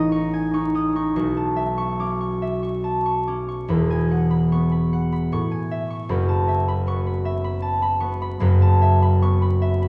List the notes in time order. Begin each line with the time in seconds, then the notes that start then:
Already playing: A1 C#4 D#4 D#5 E5 G#5 A5 C#6
0.12 D#4 C#6
0.34 G#5
0.54 D#4 C#6
0.75 C#4 D#6
0.95 D#4 C#6
1.16 B1 C#6
1.37 A5
1.56 E5
1.78 C#6
1.99 C#4 D6
2.21 C#6
2.42 E5
2.63 C#6
2.84 A5
3.06 C#6
3.27 C#4 D6
3.48 C#6
3.68 E1 E2 B5
3.90 G#5
4.11 F#5
4.31 B5
4.52 B3 C#6
4.72 B5
4.93 F#5
5.12 B5
5.32 A2 C#6
5.51 G#5
5.71 E5
5.90 C#6
6.09 F#1 F#2 B5
6.29 A5
6.48 E5
6.68 B5
6.87 B3 C#6
7.06 B5
7.25 E5
7.44 B5
7.62 A5
7.82 B5
8.00 B3 C#6
8.22 B5
8.40 F#1 F#2 B5
8.62 A5
8.82 E5
9.02 B5
9.22 B3 C#6
9.42 B5
9.62 E5
9.82 B5